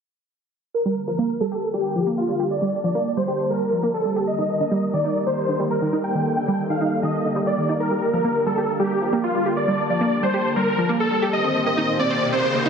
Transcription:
0.74 D3 G3 A#3 G4 A#4
0.85 G3
1.07 F3 A#4
1.19 A#3
1.40 G3 A4
1.52 G4
1.74 G3 G4
1.96 F3
2.07 A#3
2.18 F4
2.29 G3
2.40 G4
2.51 D5 A5
2.62 G3
2.84 F3 D5
2.95 A#3
3.17 G3 C5
3.28 G4
3.50 G3 A#4
3.72 F3
3.83 A#3
3.94 A4
4.05 G3
4.16 G4
4.27 D#3 A#4 D#5
4.38 D#3
4.60 D3 D#5
4.71 G3
4.93 D#3 D5
5.05 D#4
5.26 D#3 C5
5.49 D3
5.60 G3
5.71 A#4
5.82 D#3
5.93 D#4
6.04 A4 G5
6.15 D#3
6.37 D3 G5
6.48 G3
6.70 D#3 F5
6.81 D#4
7.03 D#3 D#5
7.25 D3
7.36 G3
7.47 D5
7.58 D#3
7.69 D#4
7.80 D3 A#4
7.91 G3
8.13 F3 A#4
8.24 A#3
8.46 G3 A4
8.58 G4
8.79 G3 G4
9.02 F3
9.13 A#3
9.24 F4
9.35 G3
9.46 G4
9.57 D5 A5
9.68 G3
9.90 F3 D5
10.01 A#3
10.23 G3 C5
10.34 G4
10.56 G3 A#4
10.78 F3
10.89 A#3
11.00 A4
11.11 G3
11.22 G4
11.33 D#3 A#3 C4 G4 C5 D#5, riser
11.44 C4
11.66 A#3 D#5
11.77 D#4
11.99 C4 D5
12.10 C5
12.32 C4 C5
12.55 A#3
12.66 D#4

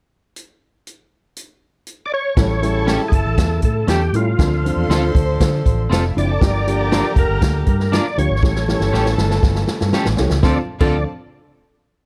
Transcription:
0.36 closed hi-hat
0.87 closed hi-hat
1.37 closed hi-hat
1.87 closed hi-hat
2.06 D5
2.14 C#5
2.36 A1 C#3 G3 A3 C#4 E4 A4 A5, kick, snare, closed hi-hat
2.62 G3 C#4 E4 A4, closed hi-hat
2.87 C#4 G4 A4, snare, closed hi-hat
3.08 G1 G#4, kick
3.13 A4, closed hi-hat
3.25 A1
3.38 E2, kick, snare, closed hi-hat
3.62 A2 A4, kick, closed hi-hat
3.87 E2 C#4 G4 A4, snare, closed hi-hat
4.13 A2 G3 C#4 E4 F4 A4, closed hi-hat
4.38 D2 F3 C4 D4 A4 C5 C6, kick, snare, closed hi-hat
4.65 F3 C4 D4 A4, closed hi-hat
4.76 E2
4.89 D2 C4 F4 A4, snare, closed hi-hat
5.15 D2, kick, closed hi-hat
5.40 D3, kick, snare, closed hi-hat
5.66 A1, kick, closed hi-hat
5.90 F1 C4 F4 A4 C5, snare, closed hi-hat
5.99 D4 D5
6.06 E4 E5
6.14 F#1 F3 C4 D4 E4 F4 D5 F5, closed hi-hat
6.23 G4 G5
6.31 A4 A5
6.39 G1 D3 F3 A#3 D4 G4 A#4 A#5, kick, snare, closed hi-hat
6.67 F3 A#3 D4 G4, closed hi-hat
6.91 D4 F4 A#4, snare, closed hi-hat
7.16 F1 A#4, kick, closed hi-hat
7.29 G1
7.42 D2, kick, snare, closed hi-hat
7.66 G2 A#4, kick, closed hi-hat
7.80 snare
7.92 D4 F4 A#4 D5, snare, closed hi-hat
8.18 D2 F3 A#3 D4 G4 C#5, closed hi-hat
8.30 G#1
8.42 A1 E3 A3 C#4 G4 A4 A5, kick, snare
8.55 snare
8.68 E3 A3 C#4 G4, snare
8.80 G1, snare
8.92 A1 C#4 G4 A4, snare
9.05 snare
9.18 G1, snare
9.30 snare
9.43 G1, kick, snare
9.55 snare
9.67 snare
9.81 G2, snare
9.93 C#4 G4 A4, snare
10.05 A1, snare
10.17 C2 E3 A3 C#4 G4, snare
10.30 C#2, snare
10.43 D2 F3 C4 D4 F4 A4 D5 A5, kick, snare
10.80 D2 F3 C4 D4 F4 A4 D5 A5, kick, crash

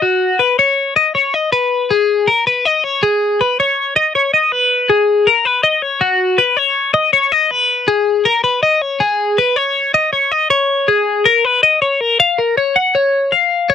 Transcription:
0.02 F#4
0.39 B4
0.59 C#5
0.96 D#5
1.15 C#5
1.34 D#5
1.52 B4
1.91 G#4
2.28 A#4
2.47 B4
2.65 D#5
2.84 C#5
3.03 G#4
3.41 B4
3.60 C#5
3.96 D#5
4.15 C#5
4.34 D#5
4.52 B4
4.90 G#4
5.27 A#4
5.45 B4
5.63 D#5
5.82 C#5
6.01 F#4
6.38 B4
6.57 C#5
6.94 D#5
7.13 C#5
7.32 D#5
7.51 B4
7.88 G#4
8.25 A#4
8.44 B4
8.63 D#5
8.82 C#5
9.00 G#4
9.38 B4
9.56 C#5
9.94 D#5
10.13 C#5
10.32 D#5
10.50 C#5
10.88 G#4
11.26 A#4
11.45 B4
11.63 D#5
11.82 C#5
12.01 A#4
12.20 F5
12.38 A#4
12.57 C#5
12.76 F#5
12.95 C#5
13.32 F5
13.70 C#5

